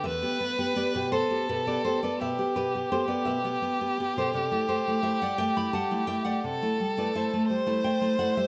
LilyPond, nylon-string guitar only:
\new Staff \with { instrumentName = "Nylon-string guitar" } { \time 12/8 \key e \minor \tempo 4. = 56 << { <b' e''>4 <b' d''>16 <g' b'>16 <a' c''>8 <g' b'>16 <b' d''>16 <a' c''>16 <b' d''>16 <b' e''>8 <g' b'>8 <a' c''>16 <b' d''>16 <b' e''>4~ <b' e''>16 <a' c''>16 | <a' d''>8 <a' c''>8 <c'' e''>16 <d'' fis''>16 <e'' g''>16 <g'' b''>16 <fis'' a''>8 <e'' g''>16 <d'' fis''>4 <b' d''>16 <c'' e''>4 <e'' g''>8 <d'' fis''>16 <c'' e''>16 | } \\ { e,16 <b g'>16 b16 <b g'>16 <b g'>16 b,16 b16 <b g'>16 b,16 <b g'>16 <b g'>16 b16 b,16 <b g'>16 b,16 <b g'>16 <b g'>16 b16 b,16 <b g'>16 b16 <b g'>16 <b g'>16 b,16 | c16 <a e'>16 a16 <a e'>16 <a e'>16 g16 a16 <a e'>16 g16 <a e'>16 <a e'>16 a16 c16 <a e'>16 g16 <a e'>16 <a e'>16 a16 g16 <a e'>16 a16 <a e'>16 <a e'>16 g16 | } >> }